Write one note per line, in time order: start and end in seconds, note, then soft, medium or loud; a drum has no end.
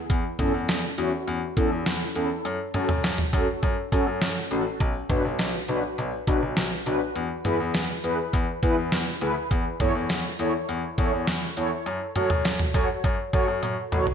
0.10 0.21 E2 medium
0.10 kick loud
0.10 closed hi-hat medium
0.39 0.50 E2 medium
0.39 0.53 C#4 medium
0.39 0.53 E4 medium
0.39 0.53 A4 medium
0.39 kick medium
0.39 closed hi-hat medium
0.39 mid tom medium
0.54 0.65 E2 medium
0.68 0.80 E2 medium
0.68 snare loud
0.68 closed hi-hat medium
0.98 1.09 E2 loud
0.98 1.12 C#4 medium
0.98 1.12 E4 medium
0.98 1.12 F#4 loud
0.98 closed hi-hat medium
1.27 1.38 E2 loud
1.27 closed hi-hat medium
1.57 1.68 E2 medium
1.57 1.71 C#4 medium
1.57 1.71 E4 medium
1.57 1.71 A4 loud
1.57 kick medium
1.57 closed hi-hat medium
1.72 1.83 E2 medium
1.86 1.97 E2 loud
1.86 snare loud
1.86 closed hi-hat medium
2.16 2.27 E2 medium
2.16 2.30 C#4 medium
2.16 2.30 E4 medium
2.16 2.30 A4 loud
2.16 closed hi-hat medium
2.45 2.56 F#2 loud
2.45 closed hi-hat medium
2.74 2.86 F#2 loud
2.74 2.88 C#4 medium
2.74 2.88 F#4 medium
2.74 2.88 A4 loud
2.74 closed hi-hat medium
2.74 mid tom medium
2.89 3.00 F#2 medium
2.89 mid tom loud
3.04 3.15 F#2 loud
3.04 snare loud
3.04 closed hi-hat medium
3.18 mid tom medium
3.33 3.44 F#2 loud
3.33 3.47 C#4 medium
3.33 3.47 F#4 medium
3.33 3.47 A4 loud
3.33 kick medium
3.33 closed hi-hat medium
3.63 3.74 F#2 loud
3.63 kick medium
3.63 closed hi-hat medium
3.92 4.03 F#2 medium
3.92 4.06 C#4 medium
3.92 4.06 F#4 medium
3.92 4.06 A4 medium
3.92 kick medium
3.92 closed hi-hat medium
4.07 4.18 F#2 medium
4.21 4.33 F#2 loud
4.21 snare loud
4.21 closed hi-hat medium
4.51 4.62 A1 medium
4.51 4.65 C#4 medium
4.51 4.65 F#4 medium
4.51 4.65 A4 medium
4.51 closed hi-hat medium
4.80 4.91 B1 loud
4.80 kick loud
4.80 closed hi-hat medium
5.09 5.21 B1 medium
5.09 5.24 D4 medium
5.09 5.24 F#4 medium
5.09 5.24 B4 medium
5.09 kick medium
5.09 closed hi-hat medium
5.09 mid tom medium
5.25 5.36 B1 medium
5.39 5.50 B1 loud
5.39 snare loud
5.39 closed hi-hat medium
5.68 5.80 B1 loud
5.68 5.83 D4 medium
5.68 5.83 F#4 medium
5.68 5.83 B4 loud
5.68 closed hi-hat medium
5.98 6.09 B1 loud
5.98 closed hi-hat medium
6.27 6.38 B1 medium
6.27 6.41 D4 medium
6.27 6.41 F#4 medium
6.27 6.41 B4 medium
6.27 kick medium
6.27 closed hi-hat medium
6.42 6.53 B1 medium
6.57 6.68 B1 loud
6.57 snare loud
6.57 closed hi-hat medium
6.86 6.97 B1 medium
6.86 7.00 D4 medium
6.86 7.00 F#4 medium
6.86 7.00 B4 loud
6.86 closed hi-hat medium
7.16 7.27 E2 loud
7.16 closed hi-hat medium
7.45 7.56 E2 medium
7.45 7.59 E4 medium
7.45 7.59 G#4 medium
7.45 7.59 B4 medium
7.45 closed hi-hat medium
7.45 mid tom medium
7.60 7.71 E2 loud
7.74 7.86 E2 medium
7.74 snare loud
7.74 closed hi-hat medium
8.04 8.15 E2 medium
8.04 8.18 E4 medium
8.04 8.18 G#4 medium
8.04 8.18 B4 loud
8.04 closed hi-hat medium
8.33 8.44 E2 loud
8.33 kick loud
8.33 closed hi-hat medium
8.62 8.74 E2 medium
8.62 8.76 E4 medium
8.62 8.76 G#4 medium
8.62 8.76 B4 loud
8.62 kick medium
8.62 closed hi-hat medium
8.77 8.88 E2 medium
8.92 9.03 E2 loud
8.92 snare loud
8.92 closed hi-hat medium
9.21 9.33 D2 loud
9.21 9.35 E4 medium
9.21 9.35 G#4 medium
9.21 9.35 B4 loud
9.21 closed hi-hat medium
9.51 9.62 E2 medium
9.51 kick loud
9.51 closed hi-hat medium
9.80 9.91 E2 medium
9.80 9.94 E4 medium
9.80 9.94 A4 medium
9.80 9.94 C#5 loud
9.80 kick medium
9.80 closed hi-hat medium
9.80 mid tom medium
9.95 10.06 E2 medium
10.09 10.21 E2 medium
10.09 snare loud
10.09 closed hi-hat medium
10.39 10.50 E2 loud
10.39 10.53 E4 medium
10.39 10.53 A4 medium
10.39 10.53 C#5 loud
10.39 closed hi-hat medium
10.69 10.80 E2 loud
10.69 closed hi-hat medium
10.98 11.09 E2 loud
10.98 11.12 E4 medium
10.98 11.12 A4 medium
10.98 11.12 C#5 medium
10.98 kick medium
10.98 closed hi-hat medium
11.13 11.24 E2 medium
11.27 11.39 E2 loud
11.27 snare loud
11.27 closed hi-hat medium
11.57 11.68 E2 medium
11.57 11.71 E4 medium
11.57 11.71 A4 medium
11.57 11.71 C#5 loud
11.57 closed hi-hat medium
11.86 11.97 F#2 loud
11.86 closed hi-hat medium
12.15 12.27 F#2 medium
12.15 12.30 F#4 medium
12.15 12.30 A4 medium
12.15 12.30 C#5 loud
12.15 closed hi-hat medium
12.15 mid tom medium
12.30 12.41 F#2 medium
12.30 mid tom medium
12.45 12.56 F#2 medium
12.45 snare loud
12.45 closed hi-hat medium
12.59 mid tom medium
12.74 12.85 F#2 loud
12.74 12.88 F#4 medium
12.74 12.88 A4 medium
12.74 12.89 C#5 loud
12.74 kick medium
12.74 closed hi-hat medium
13.04 13.15 F#2 loud
13.04 kick medium
13.04 closed hi-hat medium
13.33 13.44 F#2 medium
13.33 13.47 F#4 medium
13.33 13.47 A4 medium
13.33 13.47 C#5 loud
13.33 kick medium
13.33 closed hi-hat medium
13.48 13.59 F#2 medium
13.63 13.74 F#2 medium
13.63 closed hi-hat medium
13.63 high tom medium
13.92 14.03 A1 medium
13.92 14.06 F#4 medium
13.92 14.06 A4 medium
13.92 14.06 C#5 medium
13.92 closed hi-hat medium
13.92 mid tom medium
14.07 floor tom medium